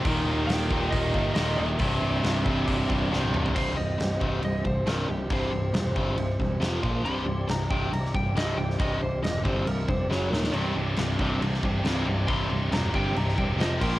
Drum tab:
CC |----------------|----------------|x---x---x---x---|x---x---x---x---|
HH |o---o---o---o---|o---o---o-------|----------------|----------------|
SD |----o-------o---|----o-------o---|----o-------o---|----o----o--o---|
T1 |----------------|-------------o--|----------------|----------------|
T2 |----------------|--------------o-|----------------|----------------|
FT |----------------|---------------o|----------------|----------------|
BD |o-----o-o-o-----|o-----o-o-o-----|o-----o---o-----|o-----o---o---o-|

CC |x---x---x---x---|x---x---x-------|x---x---x---x---|x---x---x---x-x-|
HH |----------------|----------------|----------------|----------------|
SD |----o----o--o--o|----o-------o-oo|----o----o--o---|----o----o--o--o|
T1 |----------------|----------------|----------------|----------------|
T2 |----------------|----------------|----------------|----------------|
FT |----------------|----------------|----------------|----------------|
BD |------o---o-----|o-----o---o-----|------o---o-----|o-----o---o---o-|